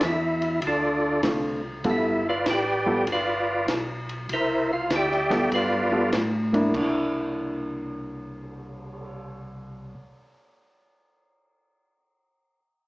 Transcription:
0.01 0.60 E2 loud
0.01 0.60 E5 medium
0.01 kick soft
0.01 snare medium
0.01 hi-hat pedal medium
0.01 ride medium
0.06 0.60 E4 medium
0.42 ride soft
0.62 1.22 D2 medium
0.62 kick soft
0.62 ride medium
0.67 1.22 D4 medium
0.67 1.22 F4 medium
0.67 1.22 A4 medium
0.67 1.22 D5 medium
1.23 1.83 C2 loud
1.23 1.60 D3 medium
1.23 1.60 A3 medium
1.23 1.61 C4 medium
1.23 1.61 F4 medium
1.23 kick soft
1.23 snare medium
1.23 hi-hat pedal medium
1.23 ride medium
1.84 2.44 G1 medium
1.84 2.22 G3 medium
1.84 2.22 B3 medium
1.84 2.22 F4 medium
1.84 2.22 A4 medium
1.84 kick soft
1.84 ride medium
1.90 2.28 E4 medium
1.90 2.27 E5 medium
2.29 2.47 F4 medium
2.29 2.47 B4 medium
2.29 2.47 D5 medium
2.29 2.47 F5 medium
2.46 3.05 A1 loud
2.46 3.05 G4 medium
2.46 3.05 G5 medium
2.46 kick soft
2.46 snare medium
2.46 hi-hat pedal medium
2.46 ride medium
2.50 3.06 B4 medium
2.50 3.05 D5 medium
2.86 3.05 G3 medium
2.86 3.05 B3 medium
2.86 3.05 F4 medium
2.86 3.05 A4 medium
3.07 3.67 G1 medium
3.07 kick soft
3.07 ride medium
3.12 3.67 F4 medium
3.12 3.67 B4 medium
3.12 3.67 D5 medium
3.12 3.67 F5 loud
3.68 4.28 B1 loud
3.68 kick soft
3.68 snare medium
3.68 hi-hat pedal medium
3.68 ride medium
4.09 ride soft
4.29 4.89 C2 loud
4.29 4.71 A#4 medium
4.29 4.71 C5 medium
4.29 kick soft
4.29 ride medium
4.33 4.72 E4 medium
4.33 4.72 E5 medium
4.73 4.92 F4 medium
4.73 4.91 F5 loud
4.90 5.50 D2 medium
4.90 kick soft
4.90 snare medium
4.90 hi-hat pedal medium
4.90 ride medium
4.95 5.51 G4 medium
4.95 5.51 D5 medium
4.95 5.50 E5 medium
4.95 5.50 G5 loud
5.11 snare soft
5.30 5.88 G3 medium
5.30 5.88 B3 medium
5.30 5.89 F4 medium
5.30 5.89 A4 medium
5.30 snare soft
5.30 ride medium
5.52 6.11 G2 medium
5.52 6.11 F4 medium
5.52 6.10 B4 medium
5.52 6.11 D5 medium
5.52 6.11 F5 loud
5.52 kick soft
5.52 ride medium
5.92 6.10 G3 medium
5.92 6.11 B3 medium
5.92 6.11 F4 medium
5.92 6.11 A4 medium
6.13 6.72 A2 loud
6.13 kick soft
6.13 snare medium
6.13 hi-hat pedal medium
6.13 ride medium
6.53 6.68 A#3 medium
6.53 6.72 D4 medium
6.53 6.72 E4 medium
6.53 ride soft
6.69 10.66 A#3 medium
6.74 9.95 C2 medium
6.74 10.70 D4 medium
6.74 kick medium
6.74 crash medium
6.81 10.72 E4 medium
7.15 cymbal swell soft

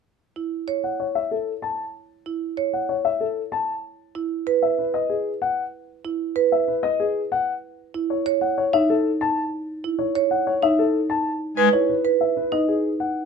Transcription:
0.36 0.57 E4 soft
0.68 0.88 C#5 medium
0.84 1.04 F#5 soft
1.00 1.20 C#5 soft
1.15 1.36 E5 medium
1.31 1.52 A4 medium
1.62 1.83 A5 medium
2.26 2.46 E4 soft
2.57 2.78 C#5 medium
2.73 2.94 F#5 soft
2.89 3.09 C#5 medium
3.05 3.25 E5 medium
3.20 3.41 A4 medium
3.52 3.73 A5 medium
4.15 4.36 E4 medium
4.47 4.67 B4 medium
4.62 4.83 E5 medium
4.78 4.99 B4 medium
4.94 5.15 D#5 medium
5.09 5.30 G#4 medium
5.42 5.62 F#5 medium
6.05 6.25 E4 medium
6.36 6.57 B4 medium
6.52 6.73 E5 medium
6.68 6.88 B4 medium
6.83 7.04 D#5 medium
7.00 7.20 G#4 medium
7.32 7.52 F#5 medium
7.94 8.15 E4 medium
8.10 8.30 C#5 medium
8.26 8.46 C#5 medium
8.41 8.62 F#5 medium
8.58 8.78 C#5 medium
8.73 8.94 D#4 medium
8.73 8.94 E5 medium
8.90 9.10 A4 medium
9.21 9.41 A5 medium
9.84 10.04 E4 medium
9.99 10.20 C#5 medium
10.15 10.36 C#5 medium
10.31 10.51 F#5 medium
10.47 10.67 C#5 medium
10.63 10.83 D#4 medium
10.63 10.83 E5 medium
10.79 10.99 A4 medium
11.10 11.30 A5 medium
11.57 11.69 G#3 medium
11.57 11.78 B4 medium
11.73 11.94 E4 medium
11.73 11.94 C#5 medium
11.89 12.10 B4 medium
12.05 12.25 B4 medium
12.21 12.41 E5 medium
12.37 12.57 B4 medium
12.52 12.73 D#4 medium
12.52 12.73 D#5 medium
12.68 12.89 G#4 medium
13.00 13.20 F#5 medium

